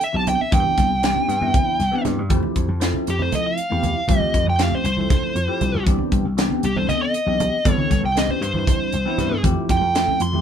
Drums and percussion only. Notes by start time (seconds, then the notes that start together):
0.01 closed hi-hat
0.27 closed hi-hat, low conga
0.41 low conga
0.52 kick, closed hi-hat, high conga
0.66 low conga
0.78 kick, snare, closed hi-hat
1.03 snare, closed hi-hat
1.16 low conga
1.29 snare, closed hi-hat
1.41 high conga, low conga
1.54 kick, closed hi-hat, low conga
1.80 snare, closed hi-hat
2.05 snare, closed hi-hat, low conga
2.30 kick, closed hi-hat, high conga
2.43 low conga
2.56 kick, closed hi-hat
2.81 snare, closed hi-hat
2.94 low conga
3.07 closed hi-hat
3.19 high conga, low conga
3.32 closed hi-hat, low conga
3.57 closed hi-hat
3.83 closed hi-hat, low conga
3.96 low conga
4.08 kick, closed hi-hat, high conga, low conga
4.20 low conga
4.34 kick, closed hi-hat
4.59 snare, closed hi-hat
4.71 low conga
4.85 closed hi-hat
4.97 high conga, low conga
5.10 kick, snare, closed hi-hat, low conga
5.22 low conga
5.36 closed hi-hat
5.61 closed hi-hat, low conga
5.86 kick, closed hi-hat, high conga
5.98 low conga
6.12 kick, closed hi-hat, low conga
6.38 snare, closed hi-hat
6.50 low conga
6.63 closed hi-hat
6.76 high conga, low conga
6.89 closed hi-hat, low conga
7.14 closed hi-hat
7.40 closed hi-hat, low conga
7.65 kick, closed hi-hat, high conga
7.78 low conga
7.91 kick, snare, closed hi-hat, low conga
8.17 snare, closed hi-hat
8.29 low conga
8.42 closed hi-hat
8.54 high conga, low conga
8.67 kick, closed hi-hat, low conga
8.92 closed hi-hat
9.18 snare, closed hi-hat, low conga
9.31 low conga
9.43 kick, closed hi-hat, high conga
9.69 kick, snare, closed hi-hat
9.95 snare, closed hi-hat
10.08 low conga
10.20 closed hi-hat
10.34 high conga, low conga